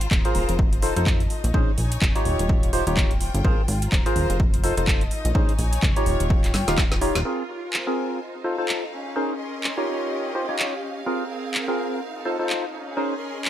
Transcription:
Already playing: F4 C5
0.01 closed hi-hat
0.07 D#1 A#5, kick
0.11 clap
0.25 F4 G#4 A#4 C5, closed hi-hat
0.35 D#1, open hi-hat
0.49 F1, closed hi-hat
0.59 kick
0.66 D#5
0.73 closed hi-hat
0.81 D#4 F4 A4 C5 A5, open hi-hat
0.96 F1 D#4 F4 A4 C5, closed hi-hat
1.06 kick, clap
1.20 closed hi-hat
1.30 D#4, open hi-hat
1.42 A#1 C#5, closed hi-hat
1.54 A#1 C#4 D#4 G#4 C5, kick
1.74 A#1 G#5, open hi-hat
1.92 closed hi-hat
2.02 F1, kick, clap
2.15 D#4 F4 G4 C#5, closed hi-hat
2.25 D#1 F4, open hi-hat
2.39 D#1, closed hi-hat
2.49 kick
2.63 closed hi-hat
2.73 D#4 F4 G4 C5, open hi-hat
2.80 G5
2.87 D#1 D#4 F4 G4 C#5, closed hi-hat
2.97 kick, clap
3.11 closed hi-hat
3.21 open hi-hat
3.34 G1, closed hi-hat
3.44 G#1 F4 G#4 A#4 C5, kick
3.68 G#1, open hi-hat
3.82 closed hi-hat
3.88 C5 A#5
3.92 D#1, kick, clap
4.06 F4 G#4 A#4 C5, closed hi-hat
4.16 D#1, open hi-hat
4.30 F1, closed hi-hat
4.40 kick
4.54 closed hi-hat
4.64 D#4 F4 A4 C5, open hi-hat
4.73 D#5 A5
4.77 F1 D#4 F4 A4 C5, closed hi-hat
4.87 kick, clap
5.01 closed hi-hat
5.11 D#4, open hi-hat
5.25 A#1 C#5, closed hi-hat
5.35 A#1 C#4 D#4 G#4 C5, kick
5.49 closed hi-hat
5.55 A#1 G#5, open hi-hat
5.73 closed hi-hat
5.83 F1, kick, clap
5.96 D#4 F4 G4 C#5, closed hi-hat
6.06 D#1 F4, open hi-hat
6.20 D#1, closed hi-hat
6.30 G5, kick
6.44 clap, closed hi-hat
6.54 G1, snare, open hi-hat
6.68 D#1 D#4 F4 G4 F5, snare, closed hi-hat
6.78 kick, snare, clap
6.92 snare, closed hi-hat
7.01 D#4 F4 G4 C#5, open hi-hat
7.15 D#1, snare, closed hi-hat
7.25 C4 F4 G#4 A#4
7.42 A#4
7.69 C5 G#5
7.73 clap
7.87 C4 F4 G#4 A#4
8.20 D#4
8.44 D#4 F4 A4 C5
8.54 A4 F5
8.58 D#4 F4 A4 C5
8.69 clap
8.92 C#4
8.96 G#4
9.16 C#4 D#4 G#4 A#4 C5
9.36 A#4 D#5 C6
9.64 clap
9.77 D#4 F4 G4 C#5
10.04 G4
10.35 D#4 F4 G4 C5
10.42 F5
10.49 D#4 F4 G4 C#5
10.59 clap
11.06 C4 F4 G#4 A#4
11.25 G#4 A#4
11.54 clap
11.68 C4 F4 G#4 A#4
12.02 D#4
12.15 A4
12.25 D#4 F4 A4 C5
12.39 D#4 F4 A4 C5
12.50 clap
12.73 C#4
12.90 G#4
12.97 C#4 D#4 G#4 A#4 C5
13.16 A#4 D#5 C6
13.45 clap

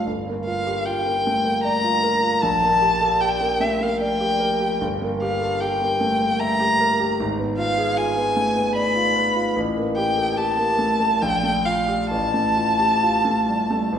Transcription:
0.06 G1
0.27 A#3
0.45 F4 F5
0.67 G4
0.86 F4 G5
1.06 A#3
1.27 A3
1.45 A#3
1.64 D5 A#5
1.84 F4
2.04 A#4
2.23 F4
2.42 A#1 A5
2.62 A#3
2.82 G4
3.01 A4
3.21 G4 G5
3.41 A#3
3.60 A3 E5
3.81 A#3 F5
4.01 D5 G5
4.20 G4
4.40 A#4
4.60 G4
4.81 G1
5.01 A#3
5.22 G4 F5
5.41 A4
5.61 G4 G5
5.81 A#3
6.01 A3
6.21 A#3
6.39 E5 A#5
6.60 G4
6.80 A#4
7.00 G4
7.20 G#1
7.39 B3
7.58 F4 F5
7.78 G#4
7.97 F4 G#5
8.17 B3
8.36 A3
8.56 B3
8.75 D5 B5
8.96 F4
9.16 B4
9.36 F4
9.56 A1
9.77 A#3
9.96 G4 G5
10.17 A4
10.37 G4 A5
10.57 A#3
10.79 A3
11.00 A#3
11.22 A#1 G5
11.43 A3
11.65 F4 F5
11.88 G4
12.10 A1 A5
12.34 A3
12.56 F4
12.80 G4
13.03 F4
13.25 A3
13.48 G3
13.71 A3
13.93 A1

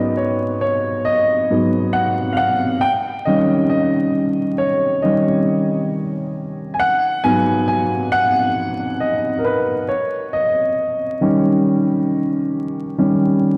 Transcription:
Already playing: G#2 F#3 B3 D#5
0.17 C#5
0.61 C#5
1.05 D#5
1.50 G#2 F#3 B3
1.93 F#5
2.33 F5
2.37 F#5
2.81 G5
3.25 D#3 G3 C#4 D#5
3.69 D#5
4.58 C#5
5.02 D#3 G3 C#4 D#5
6.74 G#5
6.79 F#5
7.24 G#2 F#3 B3 G#5
7.68 G#5
8.12 F#5
9.00 D#5
9.39 A#4
9.44 B4
9.88 C#5
10.33 D#5
11.21 D#3 G3 C#4
12.98 D#3 G3 C#4

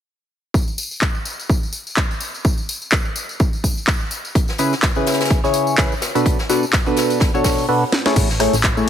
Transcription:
0.54 kick, tambourine
0.68 tambourine
0.78 tambourine
0.91 tambourine
1.01 kick, clap, tambourine
1.15 tambourine
1.25 tambourine
1.40 tambourine
1.50 kick, tambourine
1.63 tambourine
1.73 tambourine
1.87 tambourine
1.97 kick, clap, tambourine
2.11 tambourine
2.20 tambourine
2.34 tambourine
2.45 kick, tambourine
2.58 tambourine
2.69 tambourine
2.82 tambourine
2.92 kick, clap, tambourine
3.05 tambourine
3.16 tambourine
3.29 tambourine
3.40 kick, tambourine
3.53 tambourine
3.64 kick, tambourine
3.77 tambourine
3.87 kick, clap, tambourine
4.01 tambourine
4.11 tambourine
4.25 tambourine
4.35 kick, closed hi-hat, tambourine
4.48 snare, tambourine
4.58 C#3 C#4 E4 G#4 B4, snare, closed hi-hat, tambourine
4.73 snare, tambourine
4.82 kick, snare, clap, closed hi-hat, tambourine
4.95 C#3 C#4 E4 G#4 B4, tambourine
5.07 snare, closed hi-hat, tambourine
5.13 snare, closed hi-hat
5.20 snare, closed hi-hat, tambourine
5.25 snare, closed hi-hat
5.30 kick, closed hi-hat, tambourine
5.44 C#3 C#4 E4 G#4 C#5, snare, tambourine
5.54 closed hi-hat, tambourine
5.67 tambourine
5.78 C#3 C#4 B4, kick, snare, clap, closed hi-hat, tambourine
5.92 tambourine
6.02 snare, closed hi-hat, tambourine
6.15 B2 D4 F#4 A4 B4, closed hi-hat, tambourine
6.26 kick, closed hi-hat, tambourine
6.39 snare, tambourine
6.49 B2 D4 F#4 A4 B4, snare, closed hi-hat, tambourine
6.63 tambourine
6.73 kick, snare, clap, closed hi-hat, tambourine
6.86 B2 D4 F#4 A4 B4, tambourine
6.96 snare, closed hi-hat, tambourine
7.10 closed hi-hat, tambourine
7.20 kick, snare, closed hi-hat, tambourine
7.34 B2 D4 F#4 A4 C#5, tambourine
7.44 kick, snare, open hi-hat, tambourine
7.58 tambourine
7.69 B2 D4 F#4 A4 B4
7.92 snare
8.06 A3 E4 G#4 A4 C#5, snare
8.16 A1, kick, closed hi-hat, crash, tambourine
8.30 snare, tambourine
8.39 A3 E4 G#4 A4 C#5, cross-stick, snare, closed hi-hat, open hi-hat
8.53 A1, snare, closed hi-hat, tambourine
8.63 kick, snare, clap, closed hi-hat, tambourine
8.77 A3 E4 G#4 A4 C#5, tambourine

